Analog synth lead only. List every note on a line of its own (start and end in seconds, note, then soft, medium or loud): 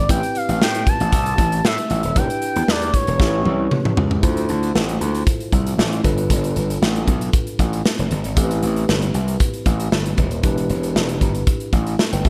0.00 0.10 D5 medium
0.11 0.38 G5 loud
0.37 0.62 F5 loud
0.63 0.90 G5 loud
0.88 1.67 A5 loud
1.65 2.19 E5 loud
2.17 2.70 G5 loud
2.69 2.96 D5 medium
2.94 3.72 C#5 loud